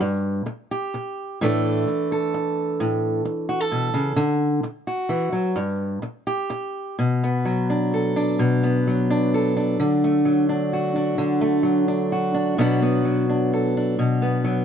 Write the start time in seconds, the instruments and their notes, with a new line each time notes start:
0.00 steel-string acoustic guitar G2
0.46 muted steel-string acoustic guitar stroke
0.71 steel-string acoustic guitar G4
0.94 muted steel-string acoustic guitar stroke
1.41 steel-string acoustic guitar A2 E3 A3 D4 A4
1.88 muted steel-string acoustic guitar stroke
2.12 steel-string acoustic guitar A4
2.34 muted steel-string acoustic guitar stroke
2.80 steel-string acoustic guitar A2
3.25 muted steel-string acoustic guitar stroke
3.49 steel-string acoustic guitar F#4
3.61 steel-string acoustic guitar A4
3.72 steel-string acoustic guitar B2
3.94 steel-string acoustic guitar C#3
4.16 steel-string acoustic guitar D3
4.63 muted steel-string acoustic guitar stroke
4.87 steel-string acoustic guitar F#4
5.09 steel-string acoustic guitar E3
5.32 steel-string acoustic guitar F#3
5.56 steel-string acoustic guitar G2
6.02 muted steel-string acoustic guitar stroke
6.27 steel-string acoustic guitar G4
6.50 muted steel-string acoustic guitar stroke
6.99 steel-string acoustic guitar B2
7.24 steel-string acoustic guitar B3
7.45 steel-string acoustic guitar F#3
7.70 steel-string acoustic guitar D4
7.94 steel-string acoustic guitar A4
8.16 steel-string acoustic guitar D4
8.39 steel-string acoustic guitar B2
8.63 steel-string acoustic guitar B3
8.87 steel-string acoustic guitar F#3
9.10 steel-string acoustic guitar D4
9.34 steel-string acoustic guitar A4
9.57 steel-string acoustic guitar D4
9.80 steel-string acoustic guitar D3
10.04 steel-string acoustic guitar A3
10.25 steel-string acoustic guitar F#3
10.49 steel-string acoustic guitar D4
10.73 steel-string acoustic guitar F#4
10.96 steel-string acoustic guitar D4
11.18 steel-string acoustic guitar D3
11.41 steel-string acoustic guitar A3
11.63 steel-string acoustic guitar F#3
11.88 steel-string acoustic guitar D4
12.12 steel-string acoustic guitar F#4
12.34 steel-string acoustic guitar D4
12.58 steel-string acoustic guitar B2 F#3 B3 D4 F#4
12.83 steel-string acoustic guitar B3
13.05 steel-string acoustic guitar F#3
13.29 steel-string acoustic guitar D4
13.53 steel-string acoustic guitar A4
13.77 steel-string acoustic guitar D4
13.99 steel-string acoustic guitar B2
14.22 steel-string acoustic guitar B3
14.44 steel-string acoustic guitar F#3